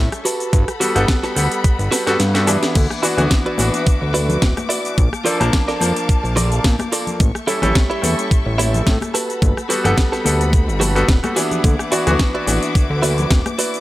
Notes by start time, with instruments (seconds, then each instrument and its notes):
Already playing: grand piano G3 C#4 E4 A4, string section A4 E5 C#6
0.12 cross-stick, closed hi-hat, shaker
0.25 clean electric guitar F#4 G4 A4 B4, string section F#5 B5, open hi-hat, shaker
0.40 closed hi-hat, shaker
0.53 analog synth bass G1, kick, closed hi-hat, shaker
0.68 cross-stick, closed hi-hat, shaker
0.80 grand piano G3 B3 F#4 A4, clean electric guitar F#4 G4 A4 B4, open hi-hat, shaker
0.95 analog synth bass G1, grand piano G3 B3 A4 F#5, cross-stick, closed hi-hat, shaker
1.08 kick, snare, closed hi-hat, shaker
1.23 clean electric guitar F#4 G4 A4 B4, snare, closed hi-hat, shaker
1.35 analog synth bass D2, grand piano G3 B3 A4 F#5, open hi-hat, shaker
1.52 closed hi-hat, shaker
1.64 kick, closed hi-hat, shaker
1.79 analog synth bass G1, muted clean electric guitar stroke, closed hi-hat, shaker
1.91 clean electric guitar F#4 G4 A4 B4, snare, open hi-hat, shaker
2.07 analog synth bass G2, grand piano G3 B3 F#4 A4, snare, closed hi-hat, shaker
2.20 analog synth bass G2, snare, closed hi-hat, shaker
2.34 grand piano G3 B3 F#4 A4, snare, closed hi-hat, shaker
2.47 grand piano E3 B3 D4 E4, clean electric guitar F#4 G4 A4 B4, open hi-hat, shaker
2.63 snare, closed hi-hat, shaker
2.75 analog synth bass D2, string section B4 E5 D6, kick, closed hi-hat, crash, high conga, shaker
2.90 cross-stick, shaker
3.02 grand piano E3 B3 D4 F#4, clean electric guitar E4 F#4 B4 D5, open hi-hat, shaker
3.17 analog synth bass D2, grand piano E3 B3 D4 F#4, cross-stick, closed hi-hat, high conga, low conga, shaker
3.31 kick, snare, closed hi-hat, shaker
3.46 clean electric guitar E4 F#4 B4 D5, closed hi-hat
3.58 analog synth bass A1, grand piano E3 B3 D4 F#4, open hi-hat, high conga, shaker
3.74 closed hi-hat, shaker
3.87 analog synth bass D2, kick, closed hi-hat, shaker
4.01 analog synth bass D2, muted clean electric guitar stroke
4.14 clean electric guitar E4 F#4 B4 D5, open hi-hat, high conga, shaker
4.29 closed hi-hat, low conga, shaker
4.42 analog synth bass D1, kick, snare, closed hi-hat, shaker
4.57 cross-stick, closed hi-hat, high conga, shaker
4.69 clean electric guitar E4 F#4 B4 D5, open hi-hat, shaker
4.85 closed hi-hat, shaker
4.98 analog synth bass A#1, string section A#3 F5 A5, kick, closed hi-hat, high conga, shaker
5.13 cross-stick, shaker
5.25 grand piano F3 A#3 D4 A4, clean electric guitar F4 A4 A#4 D5, open hi-hat, shaker
5.40 analog synth bass A#1, grand piano F3 A#3 D4 A5, cross-stick, closed hi-hat, high conga, low conga, shaker
5.53 kick, snare, closed hi-hat, shaker
5.68 clean electric guitar F4 A4 A#4 D5, snare, closed hi-hat, shaker
5.80 analog synth bass F2, grand piano F3 A#3 D4 A5, open hi-hat, high conga, shaker
5.96 closed hi-hat, shaker
6.09 kick, closed hi-hat, shaker
6.23 analog synth bass A#1, muted clean electric guitar stroke, shaker
6.36 clean electric guitar F4 A4 A#4 D5, open hi-hat, high conga, low conga, shaker
6.52 closed hi-hat, shaker
6.64 analog synth bass A#2, kick, snare, closed hi-hat, shaker
6.79 cross-stick, closed hi-hat, high conga, shaker
6.92 clean electric guitar F4 A4 A#4 D5, open hi-hat, shaker
7.07 closed hi-hat, low conga, shaker
7.20 analog synth bass A1, string section A4 E5 C#6, kick, closed hi-hat, high conga, shaker
7.35 cross-stick, shaker
7.47 grand piano G3 C#4 E4 A4, clean electric guitar E4 G4 A4 C#5, open hi-hat, shaker
7.62 analog synth bass A1, grand piano G3 C#4 E4 A4, cross-stick, closed hi-hat, high conga, low conga, shaker
7.75 kick, snare, closed hi-hat, shaker
7.90 clean electric guitar E4 G4 A4 C#5, closed hi-hat
8.02 analog synth bass E2, grand piano G3 C#4 E4 A4, open hi-hat, high conga, shaker
8.19 closed hi-hat, shaker
8.31 analog synth bass A1, kick, closed hi-hat, shaker
8.46 analog synth bass A1, muted clean electric guitar stroke
8.58 clean electric guitar E4 G4 A4 C#5, open hi-hat, high conga, shaker
8.74 closed hi-hat, low conga, shaker
8.87 analog synth bass A2, kick, snare, closed hi-hat, shaker
9.01 cross-stick, closed hi-hat, high conga, shaker
9.14 clean electric guitar F#4 G4 A4 B4, string section F#5 B5, open hi-hat, shaker
9.30 closed hi-hat, shaker
9.42 analog synth bass G1, kick, closed hi-hat, high conga, shaker
9.57 cross-stick, shaker
9.69 grand piano G3 B3 F#4 A4, clean electric guitar F#4 G4 A4 B4, open hi-hat, shaker
9.84 analog synth bass G1, grand piano G3 B3 A4 F#5, cross-stick, closed hi-hat, high conga, low conga, shaker
9.98 kick, snare, closed hi-hat, shaker
10.12 clean electric guitar F#4 G4 A4 B4, snare, closed hi-hat, shaker
10.24 analog synth bass D2, grand piano G3 B3 A4 F#5, open hi-hat, high conga, shaker
10.41 closed hi-hat, shaker
10.53 kick, closed hi-hat, shaker
10.68 analog synth bass G1, muted clean electric guitar stroke, shaker
10.80 clean electric guitar F#4 G4 A4 B4, open hi-hat, high conga, low conga, shaker
10.95 grand piano G3 B3 F#4 A4, closed hi-hat, shaker
11.09 analog synth bass D1, kick, snare, closed hi-hat, shaker
11.23 grand piano G3 B3 F#4 A4, cross-stick, closed hi-hat, high conga, shaker
11.36 grand piano E3 B3 D4 E4, clean electric guitar F#4 G4 A4 B4, open hi-hat, shaker
11.51 closed hi-hat, low conga, shaker
11.64 analog synth bass D2, string section B4 E5 D6, kick, closed hi-hat, high conga, shaker
11.79 cross-stick, shaker
11.91 grand piano E3 B3 D4 F#4, clean electric guitar E4 F#4 B4 D5, open hi-hat, shaker
12.07 analog synth bass D2, grand piano E3 B3 D4 F#4, cross-stick, closed hi-hat, high conga, low conga, shaker
12.19 kick, snare, closed hi-hat, shaker
12.34 clean electric guitar E4 F#4 B4 D5, closed hi-hat
12.47 analog synth bass A1, grand piano E3 B3 D4 F#4, open hi-hat, high conga, shaker
12.63 closed hi-hat, shaker
12.75 analog synth bass D2, kick, closed hi-hat, shaker
12.90 analog synth bass D2, muted clean electric guitar stroke
13.02 clean electric guitar E4 F#4 B4 D5, open hi-hat, high conga, shaker
13.18 closed hi-hat, low conga, shaker
13.30 analog synth bass D1, kick, snare, closed hi-hat, shaker
13.46 cross-stick, closed hi-hat, high conga, shaker
13.58 clean electric guitar E4 F#4 B4 D5, open hi-hat, shaker
13.74 closed hi-hat, shaker